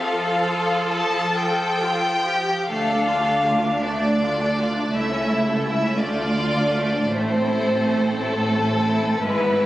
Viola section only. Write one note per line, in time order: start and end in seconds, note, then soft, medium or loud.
0.02 2.47 F3 medium
2.70 7.07 A3 soft
2.70 4.90 D4 soft
4.94 6.01 E4 soft
6.04 7.11 F4 soft
7.11 9.19 A3 soft
7.11 9.19 C4 medium
9.24 9.66 E3 medium
9.24 9.66 E4 soft